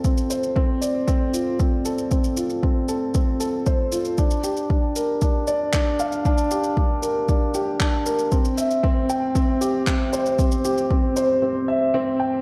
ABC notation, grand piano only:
X:1
M:4/4
L:1/8
Q:1/4=116
K:Gdor
V:1 name="Grand piano"
C c C d C F C A | C F C A C A c F | D G D B D d D f | D G D B D G D B |
C e C g C G C c | C G C c C e C g |]